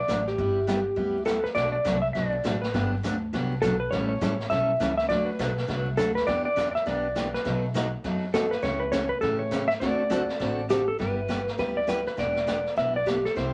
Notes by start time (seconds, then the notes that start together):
Already playing: D5
0.08 A1 D3 F#3 A3 D4 F#4, snare, hi-hat pedal
0.27 G4, snare
0.38 G1 G3 B3 E4 G4, brush sweep, kick
0.67 G3 B3 E4 G4, snare, hi-hat pedal
0.96 D2 G3 B3 E4 G4, brush sweep, kick
1.25 G3 B3 E4 G4 A4, snare, hi-hat pedal
1.44 B4, snare
1.55 B1 B2 F#3 A3 D4 F#4 D5, brush sweep, kick, snare
1.72 D5
1.85 C2 B2 F#3 A3 D4 F#4, kick, snare, hi-hat pedal
2.02 E5
2.13 B1 B2 F#3 A3 D4 F#4 D#5, brush sweep, kick, snare
2.30 D5
2.44 A1 B2 F#3 A3 D4 F#4, kick, snare, hi-hat pedal
2.62 B4, snare
2.74 G1 D3 F#3 B3 D4 G4, brush sweep, kick, snare
3.03 D2 D3 F#3 B3 D4 G4, kick, snare, hi-hat pedal
3.33 C2 D3 F#3 B3 D4 G4, brush sweep, kick, snare
3.62 B1 D3 F#3 B3 D4 G4 A4, kick, snare, hi-hat pedal
3.80 B4
3.91 A1 E3 G3 C#4 E4 A4 C#5, brush sweep, kick, snare
4.09 C#5
4.21 A1 E3 G3 C#4 E4 A4, kick, snare, hi-hat pedal
4.40 snare
4.50 B1 E3 G3 C#4 E4 A4 E5, brush sweep, kick, snare
4.80 C#2 E3 G3 C#4 E4 A4, kick, snare, hi-hat pedal
4.97 E5, snare
5.09 D2 D3 F#3 A3 D4 F#4 D5, brush sweep, kick, snare
5.26 B4
5.39 B1 D3 F#3 A3 D4 F#4, kick, snare, hi-hat pedal
5.58 snare
5.67 C2 D3 F#3 A3 D4 F#4, brush sweep, kick, snare
5.97 D2 D3 F#3 A3 D4 F#4 A4, kick, snare, hi-hat pedal
6.15 B4, snare
6.27 E2 E3 B3 D4 G4 D5, brush sweep, kick, snare
6.45 D5
6.56 E3 B3 D4 G4, kick, snare, hi-hat pedal
6.71 D5 E5
6.76 snare
6.86 B1 E3 B3 D4 G4 D5, brush sweep, kick, snare
7.15 E3 B3 D4 G4, kick, snare, hi-hat pedal
7.34 B4, snare
7.45 B1 B2 F#3 A3 D#4 F#4, brush sweep, kick, snare
7.74 B2 F#3 A3 D#4 F#4, kick, snare, hi-hat pedal
8.04 F#2 B2 F#3 A3 D#4 F#4, brush sweep, kick, snare
8.34 B2 F#3 A3 D#4 F#4 A4, kick, snare, hi-hat pedal
8.51 B4, snare
8.62 C#2 C#3 E3 A3 C#4 G4 C#5, brush sweep, kick, snare
8.80 B4
8.92 C#3 E3 A3 C#4 G4 C#5, kick, snare, hi-hat pedal
9.09 B4
9.21 A2 C#3 E3 A3 C#4 G4 A4, brush sweep, kick, snare
9.39 C#5
9.51 C#3 E3 A3 C#4 G4, kick, snare, hi-hat pedal
9.68 E5, snare
9.80 D2 D3 A3 C4 F#4 A4 D5, brush sweep, kick, snare
10.10 D3 A3 C4 F#4 A4, kick, snare, hi-hat pedal
10.29 snare
10.39 A1 D3 A3 C4 F#4 A4, brush sweep, kick, snare
10.69 D3 A3 C4 F#4 G4 A4, kick, snare, hi-hat pedal
10.88 A4
10.99 G1 G3 B3 E4 G4 B4, brush sweep, kick, snare
11.28 G3 B3 E4 G4, kick, snare, hi-hat pedal
11.48 snare
11.58 D2 G3 B3 E4 G4 B4, brush sweep, kick, snare
11.77 D5
11.87 G3 B3 E4 G4 B4, kick, snare, hi-hat pedal
12.06 B4, snare
12.17 E1 E3 B3 D4 G4 D5, brush sweep, kick, snare
12.36 snare
12.47 E3 B3 D4 G4, kick, snare, hi-hat pedal
12.66 snare
12.76 B1 E3 B3 D4 G4 E5, brush sweep, kick, snare
12.96 D5
13.06 E3 B3 D4 G4, kick, snare, hi-hat pedal
13.25 A4, snare
13.36 C2 C3 G3 C4 E4 G4 C5, brush sweep, kick, snare